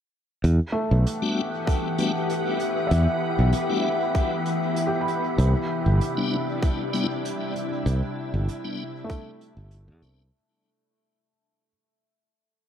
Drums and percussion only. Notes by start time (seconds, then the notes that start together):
0.44 closed hi-hat
1.07 closed hi-hat
1.67 kick, closed hi-hat
1.98 closed hi-hat
2.30 closed hi-hat
2.60 closed hi-hat
2.91 closed hi-hat
3.53 closed hi-hat
4.15 kick, closed hi-hat
4.46 closed hi-hat
4.76 closed hi-hat
5.08 closed hi-hat
5.39 closed hi-hat
6.01 closed hi-hat
6.62 kick, closed hi-hat
6.94 closed hi-hat
7.25 closed hi-hat
7.56 closed hi-hat
7.86 closed hi-hat
8.48 closed hi-hat
9.10 kick, closed hi-hat
9.41 closed hi-hat
9.71 closed hi-hat
10.03 closed hi-hat